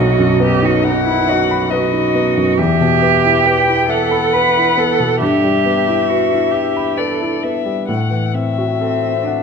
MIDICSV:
0, 0, Header, 1, 4, 480
1, 0, Start_track
1, 0, Key_signature, 1, "minor"
1, 0, Tempo, 877193
1, 1411, Time_signature, 3, 2, 24, 8
1, 3333, Tempo, 900901
1, 5111, End_track
2, 0, Start_track
2, 0, Title_t, "Violin"
2, 0, Program_c, 0, 40
2, 0, Note_on_c, 0, 75, 64
2, 463, Note_on_c, 0, 78, 80
2, 471, Note_off_c, 0, 75, 0
2, 931, Note_on_c, 0, 75, 67
2, 939, Note_off_c, 0, 78, 0
2, 1408, Note_off_c, 0, 75, 0
2, 1420, Note_on_c, 0, 76, 71
2, 1891, Note_on_c, 0, 79, 80
2, 1899, Note_off_c, 0, 76, 0
2, 2134, Note_on_c, 0, 78, 78
2, 2142, Note_off_c, 0, 79, 0
2, 2851, Note_off_c, 0, 78, 0
2, 2855, Note_on_c, 0, 76, 80
2, 3800, Note_on_c, 0, 74, 58
2, 3808, Note_off_c, 0, 76, 0
2, 4046, Note_on_c, 0, 76, 68
2, 4054, Note_off_c, 0, 74, 0
2, 4286, Note_off_c, 0, 76, 0
2, 4289, Note_on_c, 0, 78, 52
2, 4535, Note_on_c, 0, 76, 68
2, 4543, Note_off_c, 0, 78, 0
2, 5111, Note_off_c, 0, 76, 0
2, 5111, End_track
3, 0, Start_track
3, 0, Title_t, "Cello"
3, 0, Program_c, 1, 42
3, 0, Note_on_c, 1, 66, 91
3, 226, Note_on_c, 1, 67, 91
3, 234, Note_off_c, 1, 66, 0
3, 352, Note_on_c, 1, 66, 89
3, 360, Note_off_c, 1, 67, 0
3, 467, Note_off_c, 1, 66, 0
3, 470, Note_on_c, 1, 63, 96
3, 581, Note_off_c, 1, 63, 0
3, 584, Note_on_c, 1, 64, 89
3, 701, Note_on_c, 1, 66, 88
3, 709, Note_off_c, 1, 64, 0
3, 934, Note_off_c, 1, 66, 0
3, 937, Note_on_c, 1, 66, 90
3, 1407, Note_on_c, 1, 67, 112
3, 1415, Note_off_c, 1, 66, 0
3, 2124, Note_off_c, 1, 67, 0
3, 2127, Note_on_c, 1, 69, 100
3, 2367, Note_on_c, 1, 71, 96
3, 2375, Note_off_c, 1, 69, 0
3, 2615, Note_on_c, 1, 69, 103
3, 2623, Note_off_c, 1, 71, 0
3, 2841, Note_off_c, 1, 69, 0
3, 2844, Note_on_c, 1, 67, 99
3, 3330, Note_on_c, 1, 66, 84
3, 3338, Note_off_c, 1, 67, 0
3, 3552, Note_on_c, 1, 67, 78
3, 3560, Note_off_c, 1, 66, 0
3, 3806, Note_on_c, 1, 69, 67
3, 3814, Note_off_c, 1, 67, 0
3, 4045, Note_off_c, 1, 69, 0
3, 4772, Note_on_c, 1, 60, 70
3, 5009, Note_on_c, 1, 62, 64
3, 5017, Note_off_c, 1, 60, 0
3, 5111, Note_off_c, 1, 62, 0
3, 5111, End_track
4, 0, Start_track
4, 0, Title_t, "Grand piano"
4, 0, Program_c, 2, 0
4, 0, Note_on_c, 2, 35, 73
4, 73, Control_c, 2, 64, 127
4, 102, Note_on_c, 2, 42, 53
4, 220, Note_on_c, 2, 59, 60
4, 294, Note_off_c, 2, 42, 0
4, 341, Note_on_c, 2, 63, 59
4, 414, Note_off_c, 2, 59, 0
4, 463, Note_on_c, 2, 71, 57
4, 535, Note_off_c, 2, 63, 0
4, 585, Note_on_c, 2, 63, 52
4, 654, Note_off_c, 2, 71, 0
4, 707, Note_on_c, 2, 75, 63
4, 774, Note_off_c, 2, 63, 0
4, 826, Note_on_c, 2, 83, 67
4, 893, Note_off_c, 2, 75, 0
4, 941, Note_on_c, 2, 71, 67
4, 1012, Note_off_c, 2, 83, 0
4, 1055, Note_on_c, 2, 63, 51
4, 1129, Note_off_c, 2, 71, 0
4, 1175, Note_on_c, 2, 59, 62
4, 1245, Note_off_c, 2, 63, 0
4, 1297, Note_on_c, 2, 42, 50
4, 1364, Note_off_c, 2, 59, 0
4, 1390, Note_off_c, 2, 35, 0
4, 1414, Note_off_c, 2, 42, 0
4, 1416, Note_on_c, 2, 40, 72
4, 1420, Control_c, 2, 64, 0
4, 1518, Control_c, 2, 64, 127
4, 1536, Note_on_c, 2, 47, 54
4, 1652, Note_on_c, 2, 59, 57
4, 1723, Note_off_c, 2, 47, 0
4, 1773, Note_on_c, 2, 64, 57
4, 1842, Note_off_c, 2, 59, 0
4, 1891, Note_on_c, 2, 71, 56
4, 1963, Note_off_c, 2, 64, 0
4, 2011, Note_on_c, 2, 64, 49
4, 2083, Note_off_c, 2, 71, 0
4, 2129, Note_on_c, 2, 76, 60
4, 2204, Note_off_c, 2, 64, 0
4, 2250, Note_on_c, 2, 83, 56
4, 2323, Note_off_c, 2, 76, 0
4, 2376, Note_on_c, 2, 71, 61
4, 2444, Note_off_c, 2, 83, 0
4, 2501, Note_on_c, 2, 64, 49
4, 2566, Note_off_c, 2, 71, 0
4, 2610, Note_on_c, 2, 59, 53
4, 2687, Note_off_c, 2, 64, 0
4, 2735, Note_on_c, 2, 47, 46
4, 2801, Note_off_c, 2, 59, 0
4, 2830, Note_off_c, 2, 40, 0
4, 2852, Note_off_c, 2, 47, 0
4, 2853, Note_on_c, 2, 43, 74
4, 2860, Control_c, 2, 64, 0
4, 2945, Control_c, 2, 64, 127
4, 2975, Note_on_c, 2, 55, 49
4, 3095, Note_on_c, 2, 59, 46
4, 3166, Note_off_c, 2, 55, 0
4, 3216, Note_on_c, 2, 64, 52
4, 3287, Note_off_c, 2, 59, 0
4, 3337, Note_on_c, 2, 71, 46
4, 3407, Note_off_c, 2, 64, 0
4, 3457, Note_on_c, 2, 64, 51
4, 3525, Note_off_c, 2, 71, 0
4, 3572, Note_on_c, 2, 76, 56
4, 3644, Note_off_c, 2, 64, 0
4, 3693, Note_on_c, 2, 83, 52
4, 3761, Note_off_c, 2, 76, 0
4, 3803, Note_on_c, 2, 71, 54
4, 3881, Note_off_c, 2, 83, 0
4, 3929, Note_on_c, 2, 64, 46
4, 3996, Note_off_c, 2, 71, 0
4, 4053, Note_on_c, 2, 59, 42
4, 4119, Note_off_c, 2, 64, 0
4, 4165, Note_on_c, 2, 55, 39
4, 4241, Note_off_c, 2, 59, 0
4, 4266, Note_off_c, 2, 43, 0
4, 4286, Note_off_c, 2, 55, 0
4, 4288, Note_on_c, 2, 45, 58
4, 4296, Control_c, 2, 64, 0
4, 4397, Control_c, 2, 64, 127
4, 4405, Note_on_c, 2, 52, 43
4, 4532, Note_on_c, 2, 60, 41
4, 4599, Note_off_c, 2, 52, 0
4, 4659, Note_on_c, 2, 66, 41
4, 4723, Note_off_c, 2, 60, 0
4, 4781, Note_on_c, 2, 69, 41
4, 4847, Note_off_c, 2, 66, 0
4, 4900, Note_on_c, 2, 72, 40
4, 4969, Note_off_c, 2, 69, 0
4, 5023, Note_on_c, 2, 78, 39
4, 5089, Note_off_c, 2, 72, 0
4, 5111, Note_off_c, 2, 45, 0
4, 5111, Note_off_c, 2, 78, 0
4, 5111, End_track
0, 0, End_of_file